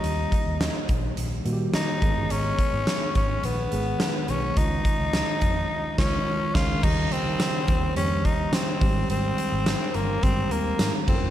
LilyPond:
<<
  \new Staff \with { instrumentName = "Tenor saxophone" } { \time 4/4 \key aes \major \tempo 4 = 106 ees'4. r4. ees'4 | des'4. des'8 ces'4. des'8 | ees'2~ ees'8 des'4 f'8 | ees'8 c'4. des'8 ees'8 c'4 |
c'4. bes8 c'8 bes4 c'8 | }
  \new Staff \with { instrumentName = "Tine electric piano" } { \time 4/4 \key aes \major <ees g bes g'>4 r4. <ees g bes ges' g'>4 <ees aes ces' aes'>8~ | <ees aes ces' aes'>4 r4. <ees aes ces' aes'>4 r8 | <ees aes des' f'>4. r4 <ees aes des' f'>8 r8 <ees aes des' f'>8 | <des ees g bes g'>4. r8 <ees g bes des' g'>4. <ees g aes c' g'>8~ |
<ees g aes c' g'>4 r4 <ees g aes c' g'>4. <ges bes des' f' a' bes'>8 | }
  \new Staff \with { instrumentName = "Fingered electric bass" } { \clef bass \time 4/4 \key aes \major ees,8 r16 ees,8 r16 bes,,8 bes,,8 bes,8 ees16 r16 aes,,16 g,,16 | aes,,8 r16 aes,16 r8 aes,,8 bes,,8 aes,,8 r8 ces,8 | des,8 r16 des,8 r16 f,8 r8 des,8 r8 des,8 | ees,8 r16 ees16 r8 ees,8 f,8 ees,8 r8 aes,,8 |
aes,,8 r16 aes,,8 r16 g,,8 g,,8 ees,8 aes,16 r16 ges,,16 f,,16 | }
  \new DrumStaff \with { instrumentName = "Drums" } \drummode { \time 4/4 hh8 <hh bd>8 <hh sn>8 <hh bd>8 hh8 hh8 <hh sn>8 <hh bd>8 | hh8 <hh bd>8 <hh sn>8 <hh bd>8 hh8 hh8 <hh sn>8 hh8 | <hh bd>8 <hh bd>8 <hh sn>8 <hh bd>8 r8 <cymc bd sn>8 r8 <cymc bd sn>8 | <cymc bd>8 hh8 <hh sn tamb>8 <hh bd>8 hh8 <hh bd>8 <hh sn tamb>8 <hho bd>8 |
hh8 hh8 <hh sn tamb>8 hh8 <hh bd>8 hh8 <hh sn tamb>8 <cymc bd>8 | }
>>